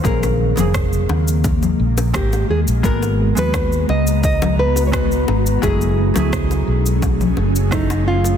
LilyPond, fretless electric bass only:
\new Staff \with { instrumentName = "Fretless electric bass" } { \clef bass \time 4/4 \key ais \phrygian \tempo 4 = 86 ais,,8. eis,,8. dis,4 ais,,8 gis,,8 dis,16 ais,,16 | gis,,8. dis,8. cis,2 gis,,8 | fis,,8. cis,8. b,,4 fis,,4. | }